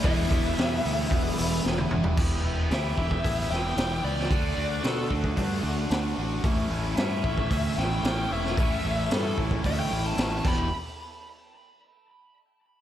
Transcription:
<<
  \new Staff \with { instrumentName = "Lead electric guitar" } { \time 4/4 \key e \dorian \tempo 4 = 112 e''2. r4 | r4 e''4. g''4 d''8~ | d''4 a'8 r2 r8 | r4 e''4. g''4 e''8~ |
e''4 a'8 r8 e''16 g''8 a''8. b''8 | r1 | }
  \new Staff \with { instrumentName = "Overdriven electric guitar" } { \time 4/4 \key e \dorian <e g b e'>8 <e g b e'>8 <e g b e'>8 <e g b e'>8 <e g b e'>8 <e g b e'>8 <e g b e'>8 <e g b e'>8 | <e b e' g'>8 <e b e' g'>8 <e b e' g'>8 <e b e' g'>8 <e b e' g'>8 <e b e' g'>8 <e b e' g'>8 <e b e' g'>8 | <d a d' fis'>8 <d a d' fis'>8 <d a d' fis'>8 <d a d' fis'>8 <d a d' fis'>8 <d a d' fis'>8 <d a d' fis'>8 <d a d' fis'>8 | <a, e a cis' e'>8 <a, e a cis' e'>8 <a, e a cis' e'>8 <a, e a cis' e'>8 <a, e a cis' e'>8 <a, e a cis' e'>8 <a, e a cis' e'>8 <a, e a cis' e'>8 |
<a, e a cis' e'>8 <a, e a cis' e'>8 <a, e a cis' e'>8 <a, e a cis' e'>8 <a, e a cis' e'>8 <a, e a cis' e'>8 <a, e a cis' e'>8 <e b e' g'>8 | r1 | }
  \new Staff \with { instrumentName = "Overdriven electric guitar" } { \clef bass \time 4/4 \key e \dorian <e, b, e>1 | r1 | r1 | r1 |
r1 | r1 | }
  \new Staff \with { instrumentName = "Fingered electric bass" } { \clef bass \time 4/4 \key e \dorian e,,8 e,,8 e,8 d,8 e,,8 e,,8 e,,8 e,,8 | e,,8 e,,8 d,8 e,,8 a,,8 e,,8 e,,8 cis,8 | d,8 d,8 b,8 d,8 g,8 d,8 d,8 a,,8 | a,,8 a,,8 g,8 a,,8 d,8 a,,8 a,,8 e,,8 |
a,,8 a,,8 g,8 a,,8 d,8 a,,8 a,,8 e,,8 | r1 | }
  \new DrumStaff \with { instrumentName = "Drums" } \drummode { \time 4/4 <hho bd>8 <hho bd>8 <hho sn>8 hho8 <hho bd>8 hho8 sn16 tommh16 toml16 tomfh16 | <cymc bd>4 <hho sn>8 bd16 bd16 <hho bd>8 sn8 <hho sn>8. sn16 | <hho bd>4 <hho sn>8 bd16 bd16 <hho bd>4 <hho sn>4 | <hho bd>4 <hho sn>8 bd16 bd16 <hho bd>8 sn8 <hho sn>8. sn16 |
<hho bd>4 <hho sn>8 bd16 bd16 <hho bd>4 <hho sn>8 <cymc bd>8 | r4 r4 r4 r4 | }
>>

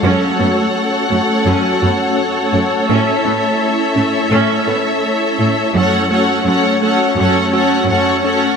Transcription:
<<
  \new Staff \with { instrumentName = "Violin section" } { \time 4/4 \key fis \minor \tempo 4 = 84 << { fis''1 | e''1 | fis''8 fis''8 fis''8 fis''8 fis''8 fis''8 fis''8 fis''8 | } \\ { cis''1~ | cis''1 | cis''8 cis''8 cis''8 cis''8 cis''8 cis''8 cis''8 cis''8 | } >> }
  \new Staff \with { instrumentName = "Analog synth pad" } { \time 4/4 \key fis \minor << { <a cis' cis''>1~ | <a cis' cis''>1 | <a cis' cis''>1 | } \\ { fis'1 | e'1 | fis'1 | } >> }
  \new Staff \with { instrumentName = "Viola section" } { \time 4/4 \key fis \minor << { a'1~ | a'1 | a'8 a'8 a'8 a'8 a'8 a'8 a'8 a'8 | } \\ { cis'8 b8 r8 a8 cis'8 b8 r8 a8 | cis'8 b8 r8 a8 cis'8 b8 r8 a8 | cis'8 cis'8 cis'8 cis'8 cis'8 cis'8 cis'8 cis'8 | } >> }
  \new Staff \with { instrumentName = "Synth arpeggio sound" } { \time 4/4 \key fis \minor fis8 a8 r8 a8 fis8 fis'8 r8 cis'8 | a8 cis'8 r8 cis'8 a8 a'8 r8 e'8 | fis8 a8 r8 a8 fis8 fis'8 r8 cis'8 | }
  \new Staff \with { instrumentName = "Cello section" } { \clef bass \time 4/4 \key fis \minor fis,8 fis,8 r8 fis,8 fis,8 fis,8 r8 fis,8 | a,8 a,8 r8 a,8 a,8 a,8 r8 a,8 | fis,4 fis,4 fis,4 fis,4 | }
>>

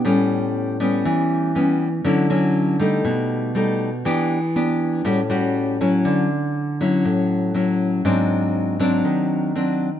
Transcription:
\new Staff \with { instrumentName = "Nylon-string guitar" } { \time 4/4 \key d \major \tempo 4 = 120 << { <g b cis'>4. <g b cis'>4. <g b cis'>8 r8 | <fis cis' e'>8 <fis cis' e'>4 <g a ees'>4. <g a dis'>8 r8 | <b d' g'>8 r8 <b d' g'>4 <g cis' fis'>8 <g cis' fis'>4 <fis cis' e'>8~ | <fis cis' e'>8 r4 <fis cis' e'>4. <fis cis' e'>4 |
<fis bis d'>4. <fis bis d'>4. <fis bis d'>8 r8 | } \\ { a,2 e2 | d2 b,2 | e2 a,2 | d2 a,2 |
gis,2 dis2 | } >> }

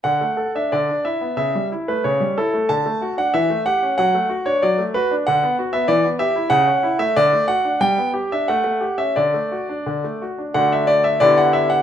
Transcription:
<<
  \new Staff \with { instrumentName = "Grand piano" } { \time 2/4 \key d \major \tempo 4 = 92 fis''8. e''16 d''8 e''8 | e''8. b'16 cis''8 a'8 | a''8. fis''16 e''8 fis''8 | fis''8. cis''16 d''8 b'8 |
fis''8. e''16 d''8 e''8 | fis''8. e''16 d''8 fis''8 | g''8. e''16 fis''8. e''16 | d''4. r8 |
fis''16 e''16 d''16 e''16 d''16 fis''16 e''16 fis''16 | }
  \new Staff \with { instrumentName = "Grand piano" } { \time 2/4 \key d \major d16 a16 a'16 d'16 d16 d'16 e'16 b16 | cis16 g16 e'16 a16 cis16 g16 e'16 a16 | d16 a16 fis'16 d'16 e16 a16 g'16 cis'16 | fis16 a16 fis'16 d'16 fis16 a16 fis'16 d'16 |
d16 b16 fis'16 b16 e16 b16 g'16 e'16 | cis16 cis'16 e'16 a16 d16 a16 fis'16 d'16 | g16 b16 g'16 d'16 a16 a16 g'16 cis'16 | d16 a16 fis'16 d'16 d16 a16 fis'16 d'16 |
<d a d' fis'>4 <d b e' g'>4 | }
>>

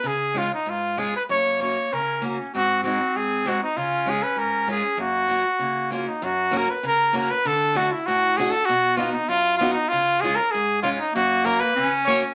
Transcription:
<<
  \new Staff \with { instrumentName = "Trumpet" } { \time 2/4 \key fis \major \tempo 4 = 97 gis'8 eis'16 dis'16 eis'8 gis'16 b'16 | cis''8 cis''8 ais'8 r8 | fis'8 fis'8 gis'8 fis'16 dis'16 | eis'8 gis'16 b'16 ais'8 gis'8 |
fis'4. eis'16 dis'16 | fis'8 ais'16 b'16 ais'8 ais'16 b'16 | a'8 fis'16 e'16 fis'8 gis'16 a'16 | fis'8 eis'16 dis'16 eis'8 eis'16 dis'16 |
eis'8 gis'16 ais'16 gis'8 eis'16 dis'16 | fis'8 ais'16 b'8 r16 cis''16 r16 | }
  \new Staff \with { instrumentName = "Steel-string acoustic guitar" } { \time 2/4 \key fis \major << { r8 <gis cis' eis'>8 r8 <gis cis' eis'>8 | r8 <ais cis' fis'>8 r8 <ais cis' fis'>8 | r8 <gis bis dis'>8 r8 <gis bis dis'>8 | r8 <gis cis' eis'>8 r8 <gis cis' eis'>8 |
r8 <ais cis' fis'>8 r8 <ais cis' fis'>8 | r8 <ais cis' fis'>8 r8 <ais cis' fis'>8 | r8 <a d' fis'>8 r8 <a d' fis'>8 | r8 <b dis' fis'>8 r8 <b dis' fis'>8 |
r8 <gis cis' eis'>8 r8 <gis cis' eis'>8 | r8 <ais cis' fis'>8 r8 <ais cis' fis'>8 | } \\ { cis4 gis,4 | fis,4 cis4 | gis,4 gis,4 | cis4 gis,4 |
fis,4 cis4 | fis,4 cis4 | d4 a,4 | b,4 fis,4 |
cis4 gis,4 | fis,4 cis4 | } >> }
  \new Staff \with { instrumentName = "Clarinet" } { \time 2/4 \key fis \major r2 | ais4 cis'4 | bis2 | cis'2 |
ais8 r8 ais4 | r2 | r2 | r2 |
r2 | ais4 cis'4 | }
>>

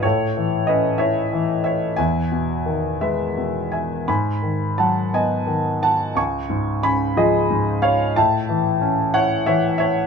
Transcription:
<<
  \new Staff \with { instrumentName = "Grand piano" } { \time 6/8 \key a \lydian \tempo 4. = 60 <a' cis''>4 <b' dis''>8 <cis'' e''>4 <cis'' e''>8 | <e'' gis''>4. <b' e''>4 <e'' gis''>8 | <gis'' b''>4 <fis'' a''>8 <dis'' gis''>4 <fis'' a''>8 | <gis'' cis'''>4 <gis'' b''>8 <gis' dis''>4 <cis'' eis''>8 |
<e'' a''>4 r8 <cis'' fis''>8 <cis'' e''>8 <cis'' e''>8 | }
  \new Staff \with { instrumentName = "Grand piano" } { \clef bass \time 6/8 \key a \lydian a,8 e8 cis'8 e'8 e4 | e,8 b,8 dis8 gis8 b,4 | gis,8 dis8 fis8 b8 dis4 | cis,8 gis,8 cis8 eis8 gis,4 |
a,8 e8 cis'8 e'8 e4 | }
>>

